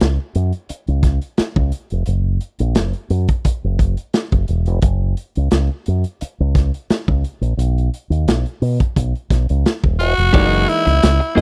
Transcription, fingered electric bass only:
0.02 0.17 C#2 medium
0.35 0.51 F#2 medium
0.70 muted fingered electric bass stroke soft
0.88 1.18 C#2 medium
1.39 muted fingered electric bass stroke soft
1.56 1.70 C#2 medium
1.92 2.06 F1 medium
2.07 2.37 F#1 medium
2.60 2.74 A#1 medium
2.76 2.92 F#1 medium
3.10 3.26 F#2 medium
3.45 muted fingered electric bass stroke soft
3.64 3.94 F#1 medium
4.33 4.47 F#1 medium
4.49 4.67 E1 medium
4.67 4.81 F1 medium
4.83 5.13 F#1 medium
5.37 5.51 C#2 medium
5.52 5.68 C#2 medium
5.88 6.03 F#2 medium
6.22 muted fingered electric bass stroke soft
6.40 6.70 C#2 medium
6.90 muted fingered electric bass stroke soft
7.08 7.22 C#2 medium
7.41 7.56 A#1 medium
7.57 7.88 B1 medium
8.10 8.25 D#2 medium
8.28 8.43 B1 medium
8.62 8.78 B2 medium
8.97 9.12 B1 medium
9.30 9.46 B1 medium
9.50 9.64 C#2 medium
9.84 10.00 D#1 medium
10.00 10.16 E1 medium
10.18 10.32 F1 medium
10.34 10.64 F#1 loud
10.86 11.00 C#2 medium
11.03 11.19 C#2 medium
11.37 11.41 F#2 loud

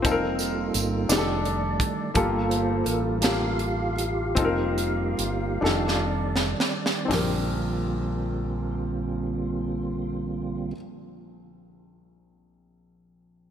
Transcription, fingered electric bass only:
0.04 0.70 F1 medium
0.75 1.07 G1 medium
1.09 1.76 F1 medium
2.15 2.82 G1 medium
2.86 4.32 A1 medium
4.37 5.15 F1 medium
5.19 5.59 G1 medium
5.62 6.54 F1 medium
7.09 10.71 A#1 medium

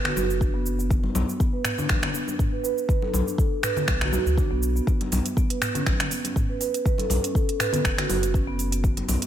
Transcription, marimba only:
0.05 0.15 F#4 medium
0.16 0.28 F#4 loud
0.41 0.48 D4 medium
0.54 0.64 B3 loud
0.79 0.89 B3 medium
0.90 1.02 B3 medium
1.15 1.27 B3 medium
1.40 1.53 B3 loud
1.53 1.64 B4 medium
1.78 1.88 D4 loud
2.14 2.22 B3 medium
2.27 2.38 D4 medium
2.52 2.62 B4 medium
2.64 2.77 B4 medium
2.88 3.01 B4 medium
3.02 3.08 A4 medium
3.27 3.37 D4 medium
3.38 3.51 A4 medium
3.63 3.76 B4 loud
3.76 3.87 B3 medium
4.01 4.11 F#4 medium
4.13 4.25 F#4 loud
4.38 4.45 D4 medium
4.51 4.61 B3 loud
4.76 4.86 B3 medium
4.87 4.99 B3 medium
5.12 5.24 B3 medium
5.37 5.50 B3 loud
5.50 5.60 B4 medium
5.75 5.85 C#4 loud
6.11 6.18 B3 medium
6.24 6.35 C#4 medium
6.49 6.59 B4 medium
6.61 6.73 B4 medium
6.85 6.97 B4 medium
6.99 7.05 A4 medium
7.23 7.34 C#4 medium
7.35 7.48 A4 medium
7.60 7.73 B4 loud
7.73 7.84 B3 medium
7.98 8.08 F#4 medium
8.09 8.22 F#4 loud
8.34 8.41 C#4 medium
8.47 8.58 B3 loud
8.72 8.82 B3 medium
8.83 8.96 B3 medium
9.08 9.21 B3 medium

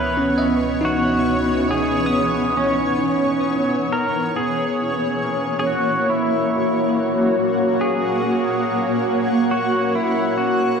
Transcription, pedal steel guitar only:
0.00 0.59 B4 medium
0.85 1.70 F#4 loud
1.71 2.60 G#4 medium
2.57 3.87 C#4 medium
3.93 4.36 A#4 loud
4.36 5.58 G#4 loud
5.59 5.66 G#4 medium
5.67 6.11 F#4 medium
6.10 7.35 E4 medium
7.81 9.58 G#4 medium
9.51 9.96 F#4 medium
9.95 10.40 E4 medium
10.38 10.80 F#4 medium

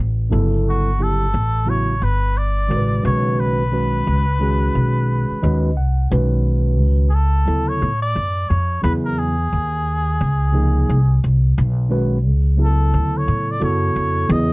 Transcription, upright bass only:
0.00 0.30 A1 medium
0.32 1.30 G1 medium
1.34 1.99 A1 medium
2.02 2.67 G1 medium
2.71 3.03 A1 medium
3.05 4.03 B1 medium
4.07 4.72 C#2 medium
4.75 5.27 B1 medium
5.30 muted upright bass stroke soft
5.43 5.77 D#2 medium
5.77 6.10 C2 medium
6.11 6.80 B1 loud
6.80 7.44 C#2 medium
7.47 7.80 D2 medium
7.82 8.14 A2 medium
8.16 8.48 F#2 medium
8.50 8.82 F2 medium
8.84 9.49 E2 loud
9.53 10.17 D#2 medium
10.21 10.85 C#2 medium
10.89 11.21 C2 medium
11.24 11.56 C2 medium
11.58 12.27 B1 loud
12.27 12.91 C#2 medium
12.94 13.26 D2 medium
13.28 13.60 A2 medium
13.62 13.94 F#2 medium
13.96 14.28 F2 medium
14.30 14.53 E2 loud

